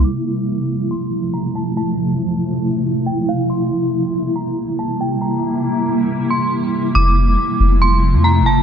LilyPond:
<<
  \new Staff \with { instrumentName = "Synth bell" } { \time 4/4 \key f \major \tempo 4 = 139 d'''2 c'''4 bes''8 a''8 | a''2 r4 g''8 f''8 | c'''2 bes''4 a''8 g''8 | bes''2~ bes''8 c'''8 r4 |
d'''2 c'''4 bes''8 a''8 | }
  \new Staff \with { instrumentName = "Ambient pad" } { \clef bass \time 4/4 \key f \major << { <c e'>1~ | <c e'>1~ | <c e'>1~ | <c e'>1 |
<c e'>1 | } \\ { <f a>1~ | <f a>1 | <g bes>1~ | <g bes>1 |
<f a>1 | } >> }
  \new Staff \with { instrumentName = "808-style bass" } { \clef bass \time 4/4 \key f \major r1 | r1 | r1 | r1 |
f,,4 r8 f,,4~ f,,16 f,8~ f,32 f,,8~ f,,32 | }
>>